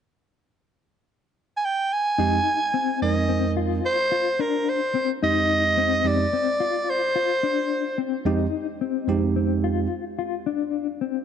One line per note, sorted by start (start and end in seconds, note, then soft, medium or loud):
1.57 1.67 G#5 medium
1.65 1.94 G5 medium
1.93 3.02 G#5 medium
2.18 2.38 F2 medium
2.18 2.38 G#3 medium
2.18 2.38 C4 medium
2.18 2.58 D#4 medium
2.18 2.39 D#4 medium
2.18 2.39 G4 medium
2.74 3.14 C4 medium
3.02 3.79 F2 medium
3.02 3.79 G#3 medium
3.02 3.80 C4 medium
3.02 3.80 D#4 medium
3.02 3.80 A#4 medium
3.02 3.53 D#5 medium
3.29 3.49 C4 medium
3.57 3.97 F4 medium
3.86 4.42 C5 medium
4.12 4.32 F4 medium
4.39 4.79 D4 medium
4.39 4.70 A#4 medium
4.69 5.10 C5 medium
4.95 5.15 C4 medium
5.23 6.00 F2 soft
5.23 6.00 G#3 soft
5.23 6.00 C4 soft
5.23 5.62 D#4 medium
5.23 6.00 D#4 soft
5.23 6.00 G4 medium
5.23 6.09 D#5 medium
5.77 6.17 C4 medium
6.05 6.24 F2 medium
6.05 6.25 G#3 soft
6.05 6.25 C4 soft
6.05 6.25 D#4 soft
6.05 6.25 G4 medium
6.05 6.91 D5 medium
6.33 6.53 C4 medium
6.60 7.00 F4 medium
6.90 7.99 C5 medium
7.16 7.36 F4 medium
7.43 7.83 D4 medium
7.98 8.18 C4 medium
8.25 8.45 F2 medium
8.25 8.45 G#3 medium
8.25 8.45 C4 medium
8.25 8.45 D#4 medium
8.25 8.66 D#4 medium
8.25 8.46 G4 medium
8.81 9.21 C4 medium
9.08 9.86 F2 medium
9.08 9.86 G#3 medium
9.08 9.86 C4 medium
9.08 9.86 D#4 medium
9.08 9.86 G4 medium
9.36 9.56 C4 medium
9.64 10.04 F4 medium
10.19 10.39 F4 medium
10.46 10.86 D4 medium
11.01 11.21 C4 medium